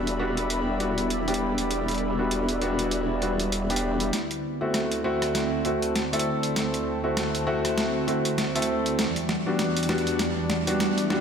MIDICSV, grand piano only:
0, 0, Header, 1, 2, 480
1, 0, Start_track
1, 0, Tempo, 606061
1, 1355, Time_signature, 4, 2, 24, 8
1, 8875, End_track
2, 0, Start_track
2, 0, Title_t, "Grand piano"
2, 0, Program_c, 0, 0
2, 0, Note_on_c, 0, 55, 71
2, 0, Note_on_c, 0, 59, 65
2, 0, Note_on_c, 0, 62, 68
2, 0, Note_on_c, 0, 66, 79
2, 130, Note_off_c, 0, 55, 0
2, 130, Note_off_c, 0, 59, 0
2, 130, Note_off_c, 0, 62, 0
2, 131, Note_off_c, 0, 66, 0
2, 153, Note_on_c, 0, 55, 88
2, 154, Note_on_c, 0, 59, 81
2, 154, Note_on_c, 0, 62, 80
2, 154, Note_on_c, 0, 66, 96
2, 610, Note_off_c, 0, 55, 0
2, 610, Note_off_c, 0, 59, 0
2, 610, Note_off_c, 0, 62, 0
2, 610, Note_off_c, 0, 66, 0
2, 635, Note_on_c, 0, 55, 72
2, 635, Note_on_c, 0, 59, 65
2, 635, Note_on_c, 0, 62, 64
2, 636, Note_on_c, 0, 66, 80
2, 844, Note_off_c, 0, 55, 0
2, 844, Note_off_c, 0, 62, 0
2, 845, Note_off_c, 0, 59, 0
2, 845, Note_off_c, 0, 66, 0
2, 1013, Note_on_c, 0, 55, 83
2, 1013, Note_on_c, 0, 59, 73
2, 1013, Note_on_c, 0, 67, 91
2, 1014, Note_on_c, 0, 62, 75
2, 1700, Note_off_c, 0, 55, 0
2, 1700, Note_off_c, 0, 59, 0
2, 1700, Note_off_c, 0, 67, 0
2, 1701, Note_off_c, 0, 62, 0
2, 1732, Note_on_c, 0, 55, 73
2, 1732, Note_on_c, 0, 62, 65
2, 1733, Note_on_c, 0, 66, 76
2, 1734, Note_on_c, 0, 59, 66
2, 2050, Note_off_c, 0, 55, 0
2, 2050, Note_off_c, 0, 62, 0
2, 2051, Note_off_c, 0, 59, 0
2, 2051, Note_off_c, 0, 66, 0
2, 2073, Note_on_c, 0, 55, 87
2, 2073, Note_on_c, 0, 59, 80
2, 2073, Note_on_c, 0, 62, 81
2, 2073, Note_on_c, 0, 66, 100
2, 2530, Note_off_c, 0, 55, 0
2, 2530, Note_off_c, 0, 59, 0
2, 2530, Note_off_c, 0, 62, 0
2, 2530, Note_off_c, 0, 66, 0
2, 2553, Note_on_c, 0, 55, 73
2, 2553, Note_on_c, 0, 59, 64
2, 2553, Note_on_c, 0, 66, 80
2, 2554, Note_on_c, 0, 62, 67
2, 2763, Note_off_c, 0, 55, 0
2, 2763, Note_off_c, 0, 66, 0
2, 2764, Note_off_c, 0, 59, 0
2, 2764, Note_off_c, 0, 62, 0
2, 2932, Note_on_c, 0, 59, 76
2, 2932, Note_on_c, 0, 62, 76
2, 2933, Note_on_c, 0, 55, 79
2, 2933, Note_on_c, 0, 67, 89
2, 3262, Note_off_c, 0, 55, 0
2, 3262, Note_off_c, 0, 59, 0
2, 3262, Note_off_c, 0, 62, 0
2, 3262, Note_off_c, 0, 67, 0
2, 3650, Note_on_c, 0, 57, 74
2, 3651, Note_on_c, 0, 60, 64
2, 3651, Note_on_c, 0, 64, 64
2, 3651, Note_on_c, 0, 66, 80
2, 3969, Note_off_c, 0, 57, 0
2, 3969, Note_off_c, 0, 60, 0
2, 3970, Note_off_c, 0, 64, 0
2, 3970, Note_off_c, 0, 66, 0
2, 3994, Note_on_c, 0, 57, 87
2, 3994, Note_on_c, 0, 60, 83
2, 3994, Note_on_c, 0, 64, 82
2, 3994, Note_on_c, 0, 66, 97
2, 4450, Note_off_c, 0, 57, 0
2, 4450, Note_off_c, 0, 60, 0
2, 4450, Note_off_c, 0, 66, 0
2, 4451, Note_off_c, 0, 64, 0
2, 4476, Note_on_c, 0, 57, 75
2, 4477, Note_on_c, 0, 60, 67
2, 4477, Note_on_c, 0, 64, 69
2, 4477, Note_on_c, 0, 66, 81
2, 4685, Note_off_c, 0, 57, 0
2, 4685, Note_off_c, 0, 60, 0
2, 4685, Note_off_c, 0, 66, 0
2, 4686, Note_off_c, 0, 64, 0
2, 4854, Note_on_c, 0, 57, 83
2, 4854, Note_on_c, 0, 60, 76
2, 4854, Note_on_c, 0, 64, 74
2, 4854, Note_on_c, 0, 69, 89
2, 5540, Note_off_c, 0, 60, 0
2, 5541, Note_off_c, 0, 57, 0
2, 5541, Note_off_c, 0, 64, 0
2, 5541, Note_off_c, 0, 69, 0
2, 5573, Note_on_c, 0, 57, 73
2, 5574, Note_on_c, 0, 60, 69
2, 5574, Note_on_c, 0, 64, 68
2, 5574, Note_on_c, 0, 66, 80
2, 5890, Note_off_c, 0, 57, 0
2, 5891, Note_off_c, 0, 60, 0
2, 5891, Note_off_c, 0, 64, 0
2, 5891, Note_off_c, 0, 66, 0
2, 5914, Note_on_c, 0, 57, 91
2, 5914, Note_on_c, 0, 60, 85
2, 5914, Note_on_c, 0, 64, 83
2, 5914, Note_on_c, 0, 66, 103
2, 6370, Note_off_c, 0, 57, 0
2, 6370, Note_off_c, 0, 60, 0
2, 6370, Note_off_c, 0, 64, 0
2, 6370, Note_off_c, 0, 66, 0
2, 6394, Note_on_c, 0, 57, 74
2, 6394, Note_on_c, 0, 64, 69
2, 6395, Note_on_c, 0, 60, 70
2, 6395, Note_on_c, 0, 66, 83
2, 6604, Note_off_c, 0, 57, 0
2, 6604, Note_off_c, 0, 60, 0
2, 6604, Note_off_c, 0, 64, 0
2, 6604, Note_off_c, 0, 66, 0
2, 6773, Note_on_c, 0, 57, 87
2, 6774, Note_on_c, 0, 60, 77
2, 6774, Note_on_c, 0, 64, 78
2, 6774, Note_on_c, 0, 69, 92
2, 7103, Note_off_c, 0, 57, 0
2, 7103, Note_off_c, 0, 60, 0
2, 7103, Note_off_c, 0, 64, 0
2, 7103, Note_off_c, 0, 69, 0
2, 7495, Note_on_c, 0, 55, 71
2, 7495, Note_on_c, 0, 62, 65
2, 7495, Note_on_c, 0, 66, 76
2, 7496, Note_on_c, 0, 59, 65
2, 7811, Note_off_c, 0, 66, 0
2, 7812, Note_off_c, 0, 55, 0
2, 7812, Note_off_c, 0, 59, 0
2, 7812, Note_off_c, 0, 62, 0
2, 7833, Note_on_c, 0, 55, 90
2, 7833, Note_on_c, 0, 59, 79
2, 7833, Note_on_c, 0, 62, 78
2, 7833, Note_on_c, 0, 66, 94
2, 8058, Note_off_c, 0, 55, 0
2, 8058, Note_off_c, 0, 59, 0
2, 8058, Note_off_c, 0, 62, 0
2, 8058, Note_off_c, 0, 66, 0
2, 8452, Note_on_c, 0, 55, 78
2, 8452, Note_on_c, 0, 62, 71
2, 8453, Note_on_c, 0, 59, 73
2, 8453, Note_on_c, 0, 66, 85
2, 8770, Note_off_c, 0, 55, 0
2, 8770, Note_off_c, 0, 59, 0
2, 8770, Note_off_c, 0, 62, 0
2, 8770, Note_off_c, 0, 66, 0
2, 8792, Note_on_c, 0, 55, 91
2, 8792, Note_on_c, 0, 59, 82
2, 8792, Note_on_c, 0, 62, 85
2, 8793, Note_on_c, 0, 66, 102
2, 8875, Note_off_c, 0, 55, 0
2, 8875, Note_off_c, 0, 59, 0
2, 8875, Note_off_c, 0, 62, 0
2, 8875, Note_off_c, 0, 66, 0
2, 8875, End_track
0, 0, End_of_file